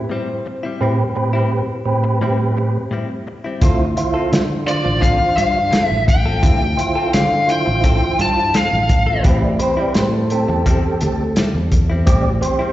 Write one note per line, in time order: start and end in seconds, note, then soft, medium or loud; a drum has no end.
0.10 0.28 A2 medium
0.10 0.29 G3 medium
0.10 0.45 C4 medium
0.10 0.28 C4 medium
0.10 0.28 E4 medium
0.29 muted clean electric guitar stroke soft
0.46 muted clean electric guitar stroke soft
0.63 0.80 G3 soft
0.63 0.81 C4 medium
0.63 0.81 E4 medium
0.81 1.04 A2 medium
0.81 0.99 A2 medium
0.81 0.99 G3 medium
0.81 1.04 C4 medium
0.81 0.99 C4 medium
0.81 0.98 E4 medium
0.81 1.04 G4 medium
0.81 1.04 B4 medium
0.99 muted clean electric guitar stroke soft
1.15 1.62 A2 medium
1.15 1.62 C4 medium
1.15 1.62 G4 medium
1.15 1.62 B4 medium
1.15 muted clean electric guitar stroke soft
1.33 1.50 G3 soft
1.33 1.50 C4 medium
1.33 1.51 E4 medium
1.51 muted clean electric guitar stroke soft
1.85 2.78 A2 medium
1.85 2.78 C4 medium
1.85 2.78 G4 medium
1.85 2.78 B4 loud
2.04 muted clean electric guitar stroke medium
2.21 2.40 A2 medium
2.21 2.39 G3 medium
2.21 2.39 C4 medium
2.21 2.38 E4 medium
2.39 muted clean electric guitar stroke soft
2.57 muted clean electric guitar stroke soft
2.91 3.10 A2 medium
2.91 3.09 G3 medium
2.91 3.09 C4 medium
2.91 3.08 E4 medium
3.09 muted clean electric guitar stroke soft
3.27 muted clean electric guitar stroke soft
3.44 3.63 G3 soft
3.44 3.61 C4 soft
3.44 3.62 E4 soft
3.61 3.94 D2 medium
3.61 3.80 D3 medium
3.61 3.79 C4 medium
3.61 3.85 E4 medium
3.61 3.85 F4 medium
3.61 3.79 F4 medium
3.61 3.78 A4 medium
3.61 3.85 C5 medium
3.61 kick loud
3.61 closed hi-hat medium
3.79 muted clean electric guitar stroke soft
3.96 4.43 E4 medium
3.96 4.43 F4 medium
3.96 4.43 C5 medium
3.96 muted clean electric guitar stroke soft
3.96 closed hi-hat medium
4.14 4.30 C4 soft
4.14 4.31 F4 medium
4.14 4.31 A4 medium
4.31 4.82 D3 medium
4.31 muted clean electric guitar stroke soft
4.31 snare medium
4.31 closed hi-hat medium
4.66 5.59 D4 medium
4.66 5.59 F4 medium
4.66 5.59 C5 medium
4.66 5.01 D5 medium
4.66 closed hi-hat medium
4.85 5.18 A1 medium
4.85 muted clean electric guitar stroke soft
5.01 5.20 D3 medium
5.01 5.20 C4 medium
5.01 5.20 F4 medium
5.01 5.19 A4 medium
5.01 5.36 F5 medium
5.01 kick medium
5.01 closed hi-hat medium
5.20 muted clean electric guitar stroke soft
5.37 5.70 G2 medium
5.37 5.84 F5 medium
5.37 muted clean electric guitar stroke soft
5.37 closed hi-hat medium
5.71 5.90 D3 medium
5.71 5.91 C4 medium
5.71 5.90 F4 medium
5.71 5.89 A4 medium
5.71 snare loud
5.71 closed hi-hat medium
5.84 6.04 E5 medium
5.90 6.40 A1 medium
5.90 muted clean electric guitar stroke soft
6.07 7.10 G5 medium
6.07 muted clean electric guitar stroke soft
6.07 kick medium
6.07 closed hi-hat medium
6.26 6.42 C4 soft
6.26 6.42 F4 soft
6.26 6.43 A4 medium
6.42 6.76 D2 medium
6.42 6.61 D3 medium
6.42 6.62 C4 medium
6.42 6.66 E4 medium
6.42 6.66 F4 medium
6.42 6.61 F4 medium
6.42 6.66 G4 medium
6.42 6.60 A4 medium
6.42 kick loud
6.42 closed hi-hat medium
6.61 muted clean electric guitar stroke soft
6.77 7.24 E4 medium
6.77 7.24 F4 medium
6.77 7.24 C5 medium
6.77 muted clean electric guitar stroke soft
6.77 closed hi-hat medium
6.95 7.12 C4 soft
6.95 7.13 F4 medium
6.95 7.13 A4 soft
7.13 7.63 D3 medium
7.13 7.50 F5 medium
7.13 snare medium
7.13 closed hi-hat medium
7.48 8.40 E4 medium
7.48 8.41 F4 medium
7.48 8.40 C5 medium
7.48 8.21 G5 loud
7.48 closed hi-hat medium
7.66 8.00 A1 medium
7.66 muted clean electric guitar stroke soft
7.84 8.02 D3 medium
7.84 8.03 C4 medium
7.84 8.02 F4 medium
7.84 8.01 A4 medium
7.84 kick medium
7.84 closed hi-hat medium
8.03 muted clean electric guitar stroke soft
8.19 8.52 G2 medium
8.19 8.54 A5 loud
8.19 muted clean electric guitar stroke soft
8.19 closed hi-hat medium
8.54 8.73 D3 medium
8.54 8.73 C4 medium
8.54 8.72 F4 medium
8.54 8.71 A4 medium
8.54 9.23 F5 medium
8.54 snare loud
8.54 closed hi-hat medium
8.72 9.22 A1 medium
8.72 muted clean electric guitar stroke soft
8.89 muted clean electric guitar stroke soft
8.89 kick medium
8.89 closed hi-hat medium
9.07 9.24 C4 soft
9.07 9.25 F4 soft
9.07 9.25 A4 medium
9.24 9.58 A1 medium
9.24 9.43 A2 medium
9.24 9.43 G3 medium
9.24 9.48 C4 medium
9.24 9.42 C4 medium
9.24 9.41 E4 medium
9.24 9.49 G4 medium
9.24 9.49 B4 medium
9.24 9.44 E5 medium
9.24 kick loud
9.24 closed hi-hat medium
9.42 9.61 D5 medium
9.42 muted clean electric guitar stroke soft
9.59 10.06 C4 medium
9.59 10.06 G4 medium
9.59 10.06 B4 loud
9.59 9.79 C5 medium
9.59 muted clean electric guitar stroke soft
9.59 closed hi-hat medium
9.77 9.94 G3 soft
9.77 9.94 C4 medium
9.77 9.95 E4 medium
9.77 9.95 D5 medium
9.94 10.45 A2 medium
9.94 10.13 C5 medium
9.94 muted clean electric guitar stroke soft
9.94 snare loud
9.94 closed hi-hat medium
10.13 10.30 A4 medium
10.30 11.23 C4 medium
10.30 11.24 G4 medium
10.30 10.49 G4 medium
10.30 11.24 A4 loud
10.30 closed hi-hat medium
10.48 10.82 E2 medium
10.48 10.67 A4 medium
10.48 muted clean electric guitar stroke soft
10.66 10.84 A2 medium
10.66 10.85 G3 medium
10.66 10.84 C4 medium
10.66 10.84 E4 medium
10.66 11.01 G4 medium
10.66 kick medium
10.66 closed hi-hat medium
10.85 muted clean electric guitar stroke soft
11.01 11.34 D2 medium
11.01 12.72 A4 medium
11.01 muted clean electric guitar stroke soft
11.01 closed hi-hat medium
11.36 11.55 A2 medium
11.36 11.55 G3 medium
11.36 11.54 C4 medium
11.36 11.53 E4 medium
11.36 snare loud
11.36 closed hi-hat medium
11.54 12.03 E2 medium
11.54 muted clean electric guitar stroke medium
11.72 muted clean electric guitar stroke soft
11.72 kick medium
11.72 closed hi-hat medium
11.90 12.06 G3 soft
11.90 12.06 C4 medium
11.90 12.07 E4 medium
12.06 12.40 A1 medium
12.06 12.25 A2 medium
12.06 12.25 G3 medium
12.06 12.30 C4 medium
12.06 12.24 C4 medium
12.06 12.23 E4 medium
12.06 12.30 G4 medium
12.06 12.30 D5 medium
12.06 kick loud
12.06 closed hi-hat medium
12.25 muted clean electric guitar stroke medium
12.41 12.72 C4 medium
12.41 12.72 G4 medium
12.41 12.72 C5 loud
12.41 muted clean electric guitar stroke soft
12.41 closed hi-hat medium
12.59 12.72 G3 medium
12.59 12.72 C4 medium
12.59 12.72 E4 medium